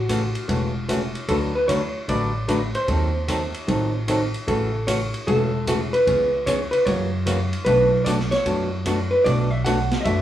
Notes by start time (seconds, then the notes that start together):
Already playing: A1 F#4
0.09 C#3 E3 A3 C#4 F#4, kick, hi-hat pedal, ride
0.35 ride
0.48 E1 C#3 E3 A3 C#4 F#4, kick, ride
0.89 C#3 E3 A3 C#4 F#4, kick, hi-hat pedal, ride
1.15 ride
1.28 D2 D3 F#3 A3 D4 F#4 A4 B4, kick, ride
1.55 B4
1.68 D3 F#3 A3 D4 F#4 B4 C#5, kick, hi-hat pedal, ride
2.08 A1 D3 F#3 A3 D4 F#4 B4 D5, kick, ride
2.48 D3 F#3 A3 D4 F#4 B4, kick, hi-hat pedal, ride
2.75 C5, ride
2.88 D#2 D#3 F#3 C4 D#4 A4, kick, ride
3.28 D#3 F#3 C4 D#4 A4, kick, hi-hat pedal, ride
3.54 ride
3.67 A1 D#3 F#3 C4 D#4 A4, kick, ride
4.08 D#3 F#3 C4 D#4 A4, kick, hi-hat pedal, ride
4.34 ride
4.47 A1 C#3 E3 A3 C#4 F#4 A4, kick, ride
4.87 C#3 E3 A3 C#4 F#4 C#5, kick, hi-hat pedal, ride
5.14 ride
5.27 E1 C#3 E3 A3 C#4 F#4 A4, kick, ride
5.67 C#3 E3 A3 C#4 F#4, kick, hi-hat pedal, ride
5.71 G#4
5.93 B4, ride
6.07 C#2 C#3 E3 B3 C#4 G#4, kick, ride
6.46 C#3 E3 B3 C#4 G#4 C#5, kick, hi-hat pedal, ride
6.71 B4, ride
6.86 F#2 C#3 E3 A#3 C#4 F#4 C#5, kick, ride
7.26 C#3 E3 A#3 C#4 F#4, kick, hi-hat pedal, ride
7.53 ride
7.65 B1 B2 F#3 A3 D4 F#4 B4, kick, ride
8.05 B2 F#3 A3 D4 F#4 D5, kick, hi-hat pedal, ride
8.19 snare
8.31 C#5, snare, ride
8.46 F#2 B2 F#3 A3 D4 F#4, kick, ride
8.86 B2 F#3 A3 D4 F#4, kick, hi-hat pedal, ride
9.11 B4
9.24 B1 B2 F#3 A3 D4 F#4 D5, kick, ride
9.51 E5
9.65 B2 F#3 A3 D4 F#4 F#5, kick, hi-hat pedal, ride
9.91 snare, ride
10.01 D#5 E5
10.05 F#2 B2 F#3 A3 D4 F#4, kick, ride